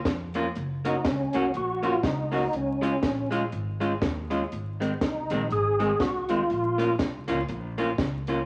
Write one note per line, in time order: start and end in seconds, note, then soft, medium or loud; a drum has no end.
0.05 0.48 F2 loud
0.05 muted hollow-body jazz guitar stroke medium
0.05 kick loud
0.05 snare loud
0.05 closed hi-hat medium
0.34 0.46 A#3 medium
0.34 0.46 C#4 medium
0.34 0.46 F4 loud
0.34 closed hi-hat medium
0.55 0.98 F#1 loud
0.55 closed hi-hat medium
0.85 0.95 A#3 medium
0.85 0.95 C#4 medium
0.85 1.06 D#4 medium
0.85 0.96 F#4 medium
0.85 closed hi-hat loud
1.05 1.30 C#2 medium
1.05 1.52 C#4 medium
1.05 muted hollow-body jazz guitar stroke soft
1.05 kick loud
1.05 snare loud
1.05 closed hi-hat loud
1.33 1.52 C2 medium
1.33 1.45 A#3 medium
1.33 1.45 C#4 loud
1.33 1.45 F#4 medium
1.33 closed hi-hat loud
1.54 1.97 A#1 loud
1.54 1.85 F#4 loud
1.54 closed hi-hat medium
1.83 1.94 A#3 medium
1.83 1.94 C#4 medium
1.83 2.05 F4 loud
1.83 1.94 F#4 loud
1.83 closed hi-hat medium
2.03 2.46 C#2 medium
2.03 2.56 D#4 medium
2.03 kick loud
2.03 snare loud
2.03 closed hi-hat medium
2.32 2.43 A#3 medium
2.32 2.43 C#4 medium
2.32 2.44 F#4 medium
2.32 open hi-hat soft
2.53 2.96 C#2 medium
2.53 3.29 C#4 medium
2.53 closed hi-hat medium
2.81 2.93 G#3 medium
2.81 2.93 C#4 medium
2.81 2.93 F4 medium
2.81 closed hi-hat medium
3.02 3.45 A#1 medium
3.02 muted hollow-body jazz guitar stroke soft
3.02 kick loud
3.02 snare loud
3.02 closed hi-hat medium
3.31 3.42 G#3 medium
3.31 3.42 C#4 medium
3.31 3.43 F4 medium
3.31 closed hi-hat loud
3.52 3.95 G#1 loud
3.52 closed hi-hat medium
3.80 3.92 G#3 medium
3.80 3.92 C#4 medium
3.80 3.92 F4 medium
3.80 closed hi-hat medium
4.02 4.44 D#2 loud
4.02 muted hollow-body jazz guitar stroke soft
4.02 kick loud
4.02 snare loud
4.02 closed hi-hat medium
4.30 4.41 G#3 medium
4.30 4.42 C#4 medium
4.30 4.42 F4 medium
4.30 closed hi-hat medium
4.52 4.94 G#1 loud
4.52 closed hi-hat medium
4.80 4.91 D#3 medium
4.80 4.91 G#3 medium
4.80 4.92 C4 medium
4.80 closed hi-hat medium
5.01 5.26 C2 medium
5.01 5.48 D#4 medium
5.01 muted hollow-body jazz guitar stroke medium
5.01 kick loud
5.01 snare loud
5.01 closed hi-hat loud
5.30 5.48 A#1 loud
5.30 5.41 D#3 medium
5.30 5.41 G#3 medium
5.30 5.42 C4 medium
5.30 closed hi-hat loud
5.50 5.93 G#1 medium
5.50 6.02 G#4 loud
5.50 closed hi-hat medium
5.79 5.90 D#3 medium
5.79 5.91 G#3 loud
5.79 5.91 C4 medium
5.79 closed hi-hat medium
6.00 6.42 C2 medium
6.00 6.30 F#4 loud
6.00 kick loud
6.00 snare loud
6.00 closed hi-hat medium
6.29 6.40 D#3 medium
6.29 6.40 G#3 medium
6.29 6.41 C4 medium
6.29 6.95 F4 loud
6.29 closed hi-hat medium
6.50 6.92 A#1 loud
6.50 closed hi-hat medium
6.78 6.89 A#3 medium
6.78 6.89 C#4 medium
6.78 6.90 F4 medium
6.78 closed hi-hat medium
6.99 7.24 C2 loud
6.99 muted hollow-body jazz guitar stroke soft
6.99 kick loud
6.99 snare loud
6.99 closed hi-hat medium
7.28 7.46 C#2 loud
7.28 7.39 A#3 medium
7.28 7.39 C#4 loud
7.28 7.40 F4 loud
7.28 closed hi-hat loud
7.49 7.91 A#1 loud
7.49 muted hollow-body jazz guitar stroke soft
7.49 closed hi-hat medium
7.78 7.89 A#3 loud
7.78 7.89 C#4 medium
7.78 7.89 F4 loud
7.78 closed hi-hat medium
7.98 8.41 C#2 loud
7.98 kick loud
7.98 snare loud
7.98 closed hi-hat medium
8.27 8.39 A#3 medium
8.27 8.39 C#4 medium
8.27 8.39 F4 medium
8.27 closed hi-hat medium